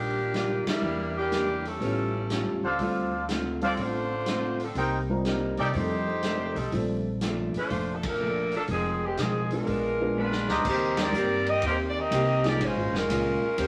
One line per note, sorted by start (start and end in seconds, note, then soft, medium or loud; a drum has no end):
0.00 0.63 A#1 medium
0.00 0.19 D#3 soft
0.00 0.64 F3 medium
0.00 0.19 G3 soft
0.00 0.64 A#3 medium
0.00 0.20 D4 soft
0.00 0.64 D4 medium
0.00 0.20 F4 medium
0.00 0.64 G4 medium
0.34 0.68 D#3 medium
0.34 0.69 G3 medium
0.34 0.69 D4 medium
0.34 0.69 F4 medium
0.34 snare medium
0.34 closed hi-hat soft
0.66 1.13 G3 medium
0.66 1.13 A#3 medium
0.66 1.13 D4 medium
0.66 1.13 E4 medium
0.66 muted upright bass stroke soft
0.66 snare medium
0.66 ride medium
0.82 1.77 E2 medium
0.82 1.17 E3 soft
0.82 1.18 A#3 soft
0.82 1.18 D4 soft
0.82 1.19 G4 soft
1.16 1.62 E3 medium
1.16 1.62 A#3 medium
1.16 1.62 D4 medium
1.16 1.62 G4 medium
1.31 1.66 E3 medium
1.31 1.67 A#3 medium
1.31 1.67 D4 medium
1.31 1.67 G4 medium
1.31 snare medium
1.31 closed hi-hat soft
1.65 2.60 G3 medium
1.65 2.60 C#4 medium
1.65 2.60 E4 medium
1.65 2.60 A4 medium
1.65 open hi-hat soft
1.81 2.42 A1 medium
1.81 2.16 A2 soft
1.81 2.16 G3 soft
1.81 2.57 B3 soft
1.81 2.17 C#4 soft
1.81 2.57 E4 soft
1.81 2.57 A4 soft
1.81 2.57 C#5 soft
1.81 kick soft
1.81 open hi-hat soft
1.85 2.18 F4 medium
2.30 2.65 A2 medium
2.30 2.66 G3 medium
2.30 2.66 C#4 medium
2.30 2.66 F4 medium
2.30 snare medium
2.30 closed hi-hat soft
2.46 2.62 E2 medium
2.63 2.78 C#2 medium
2.63 3.25 D4 medium
2.63 3.25 A4 medium
2.63 3.25 C5 medium
2.63 3.25 F5 medium
2.79 3.73 D2 medium
2.79 3.14 D3 soft
2.79 3.10 G3 soft
2.79 3.15 A3 medium
2.79 3.10 C4 soft
2.79 3.15 C4 soft
2.79 3.10 F4 soft
2.79 3.16 F4 medium
2.79 3.10 A4 medium
2.79 kick soft
2.79 open hi-hat soft
3.28 3.63 D3 medium
3.28 3.63 A3 medium
3.28 3.64 C4 medium
3.28 3.64 F4 medium
3.28 snare medium
3.28 closed hi-hat medium
3.61 3.76 G3 medium
3.61 3.77 C4 soft
3.61 3.78 C4 medium
3.61 3.73 D4 medium
3.61 3.77 F4 soft
3.61 3.78 F4 medium
3.61 3.73 A4 medium
3.61 3.77 A4 medium
3.61 3.78 A4 medium
3.61 3.73 C5 medium
3.61 3.78 D5 medium
3.61 3.73 F5 medium
3.61 open hi-hat soft
3.77 4.72 A1 medium
3.77 4.12 D3 soft
3.77 4.13 A3 soft
3.77 4.61 A3 medium
3.77 4.14 C4 soft
3.77 4.61 D4 medium
3.77 4.14 F4 medium
3.77 4.61 C5 loud
3.77 kick soft
3.77 open hi-hat soft
3.81 4.62 F4 medium
4.26 4.62 D3 medium
4.26 4.63 A3 medium
4.26 4.63 C4 medium
4.26 snare medium
4.26 closed hi-hat soft
4.31 4.63 F4 medium
4.60 4.77 F3 medium
4.60 4.77 C4 medium
4.60 4.76 A4 medium
4.60 open hi-hat soft
4.64 4.77 D4 medium
4.75 5.54 C2 medium
4.75 5.11 C3 soft
4.75 5.12 G3 soft
4.75 5.12 A#3 soft
4.75 4.98 D#4 medium
4.75 4.99 A#4 medium
4.75 4.99 C5 medium
4.75 4.98 G5 medium
4.75 kick soft
4.75 open hi-hat soft
4.79 5.12 D#4 medium
5.10 5.71 G3 medium
5.10 5.72 C4 medium
5.10 5.72 F4 medium
5.10 5.72 A#4 medium
5.25 5.60 C3 medium
5.25 5.60 G3 medium
5.25 5.61 A#3 medium
5.25 5.61 D#4 medium
5.25 snare medium
5.25 closed hi-hat soft
5.57 5.73 C3 medium
5.57 5.73 A#3 medium
5.57 5.69 D#4 medium
5.57 5.73 D#4 medium
5.57 5.73 G4 medium
5.57 5.69 A4 medium
5.57 5.69 D5 medium
5.57 5.73 D5 medium
5.57 5.69 G5 medium
5.57 open hi-hat soft
5.73 6.52 F2 medium
5.73 6.09 F2 soft
5.73 6.10 D#3 soft
5.73 6.05 G3 medium
5.73 6.56 A3 medium
5.73 6.10 A3 soft
5.73 6.05 C4 soft
5.73 6.54 D#4 medium
5.73 6.05 F4 soft
5.73 6.56 G4 medium
5.73 6.05 A4 medium
5.73 6.56 C5 medium
5.73 kick soft
5.73 open hi-hat soft
5.78 6.11 D4 soft
6.22 6.58 F2 medium
6.22 6.59 D#3 medium
6.22 6.59 A3 medium
6.22 6.60 D4 medium
6.22 snare medium
6.22 closed hi-hat medium
6.55 6.71 B1 medium
6.55 6.72 G3 medium
6.55 6.72 C4 medium
6.55 6.72 D#4 medium
6.55 6.72 A4 medium
6.55 open hi-hat soft
6.72 7.50 A#1 medium
6.72 7.07 A#2 soft
6.72 7.08 F3 soft
6.72 7.48 G3 soft
6.72 7.08 A3 soft
6.72 7.48 C4 soft
6.72 7.08 D4 soft
6.72 7.48 F4 soft
6.72 7.49 A4 medium
6.72 kick soft
6.72 open hi-hat soft
7.21 7.56 A#2 medium
7.21 7.57 F3 medium
7.21 7.57 A3 medium
7.21 7.57 D4 medium
7.21 snare medium
7.21 closed hi-hat medium
7.54 7.93 A3 medium
7.54 7.93 D4 medium
7.54 7.93 F4 medium
7.54 7.93 C5 loud
7.54 muted upright bass stroke soft
7.54 open hi-hat soft
7.69 8.65 F1 medium
7.69 8.05 A#2 soft
7.69 8.05 F3 medium
7.69 8.06 A3 medium
7.69 8.06 D4 soft
7.69 kick soft
7.69 open hi-hat soft
7.94 8.04 A4 medium
8.03 8.54 F3 medium
8.03 8.54 D4 medium
8.03 8.54 A4 medium
8.03 8.54 A#4 loud
8.03 kick medium
8.03 ride medium
8.20 8.54 A#2 medium
8.20 8.55 F3 medium
8.20 8.55 A3 medium
8.20 8.55 D4 medium
8.52 8.62 F3 medium
8.52 8.62 A#3 medium
8.52 8.62 D4 medium
8.52 open hi-hat soft
8.56 8.62 A4 medium
8.67 9.14 F1 medium
8.67 9.04 F2 soft
8.67 9.04 D#3 soft
8.67 9.01 F3 medium
8.67 9.01 C4 medium
8.67 9.01 G#4 medium
8.67 kick soft
8.67 open hi-hat soft
8.72 9.05 G#3 soft
8.72 9.05 C4 soft
8.72 9.01 D#4 medium
9.03 9.19 D#3 medium
9.03 9.19 G#3 medium
9.03 9.19 C4 medium
9.03 9.19 G4 medium
9.17 9.63 B1 medium
9.17 9.52 F2 medium
9.17 9.53 D#3 medium
9.17 9.52 F3 medium
9.17 9.53 G#3 medium
9.17 9.53 C4 medium
9.17 9.52 C4 medium
9.17 9.52 D#4 medium
9.17 9.52 G#4 medium
9.17 snare medium
9.17 closed hi-hat soft
9.50 9.66 G#3 soft
9.50 10.16 G#3 medium
9.50 9.66 B3 soft
9.50 10.17 D4 medium
9.50 9.66 D4 soft
9.50 9.66 F4 medium
9.50 10.17 F4 medium
9.50 10.46 A#4 medium
9.50 open hi-hat soft
9.66 10.45 A#1 medium
9.66 10.01 A#2 soft
9.66 10.02 G#3 soft
9.66 10.02 B3 soft
9.66 10.03 D4 soft
9.66 kick soft
9.66 open hi-hat soft
10.00 10.15 G#3 medium
10.00 10.15 B3 medium
10.00 10.15 D4 medium
10.00 10.15 F4 medium
10.16 10.51 A#2 medium
10.16 10.51 G#3 medium
10.16 10.62 G#3 medium
10.16 10.51 B3 medium
10.16 10.62 D4 medium
10.16 10.52 D4 medium
10.16 10.62 F4 medium
10.16 10.62 B4 medium
10.32 snare medium
10.48 10.63 D2 medium
10.48 11.11 G4 medium
10.48 11.11 C5 medium
10.48 11.11 D#5 medium
10.48 11.11 A#5 medium
10.48 snare medium
10.65 11.12 D#2 medium
10.65 10.99 D#3 soft
10.65 11.00 A#3 soft
10.65 10.99 A#3 medium
10.65 11.00 C4 soft
10.65 10.99 D#4 medium
10.65 11.01 G4 soft
10.65 10.99 G4 medium
10.65 11.00 C5 loud
10.65 kick medium
10.65 crash medium
10.97 11.47 G4 medium
10.97 11.47 A#4 medium
10.97 snare medium
10.97 ride medium
11.01 11.48 C4 medium
11.01 11.48 D5 loud
11.13 11.61 G2 medium
11.13 11.49 D#3 medium
11.13 11.49 A#3 medium
11.13 11.49 C4 medium
11.13 11.50 G4 medium
11.13 hi-hat pedal medium
11.46 11.64 C4 medium
11.46 11.64 G4 medium
11.46 11.64 A#4 medium
11.46 11.64 D#5 loud
11.46 ride medium
11.62 12.10 D#2 medium
11.62 11.98 D#3 soft
11.62 11.98 A#3 medium
11.62 11.75 A#3 medium
11.62 11.75 D#4 medium
11.62 11.75 G4 medium
11.62 11.75 C5 medium
11.62 kick soft
11.62 ride medium
11.66 11.99 C4 medium
11.66 11.99 G4 medium
11.89 11.97 D5 medium
11.98 12.46 C4 medium
11.98 12.46 G4 loud
11.98 12.46 A#4 medium
11.98 12.46 D#5 loud
12.11 12.59 C2 medium
12.11 12.46 D#3 medium
12.11 12.47 A#3 medium
12.11 12.47 C4 medium
12.11 12.47 G4 medium
12.11 kick soft
12.11 hi-hat pedal soft
12.11 ride medium
12.44 12.59 F3 medium
12.44 12.59 A#3 medium
12.44 12.62 A#3 medium
12.44 12.59 D#4 medium
12.44 12.62 D#4 medium
12.44 12.62 G4 medium
12.44 12.59 G#4 medium
12.44 12.62 D5 medium
12.44 snare medium
12.44 ride soft
12.60 12.76 A#1 medium
12.60 12.95 A#2 soft
12.60 12.96 G#3 soft
12.60 12.95 G#3 medium
12.60 12.96 C#4 soft
12.60 12.95 C#4 medium
12.60 12.95 F4 medium
12.60 12.95 C5 medium
12.60 kick soft
12.60 ride medium
12.65 12.97 F4 medium
12.76 12.92 G#1 medium
12.92 13.08 F1 medium
12.92 13.59 G#3 medium
12.92 13.67 C#4 medium
12.92 13.67 F4 medium
12.92 snare medium
12.96 13.67 A#4 medium
13.09 13.40 C#2 medium
13.09 13.44 A#2 medium
13.09 13.44 G#3 medium
13.09 13.45 C#4 medium
13.09 13.45 F4 medium
13.09 kick soft
13.09 hi-hat pedal medium
13.09 ride medium
13.42 muted upright bass stroke soft
13.57 13.67 D#2 medium
13.57 13.67 D#3 soft
13.57 13.67 C#4 medium
13.57 13.67 G4 medium
13.57 13.67 C5 medium
13.57 kick soft
13.57 ride medium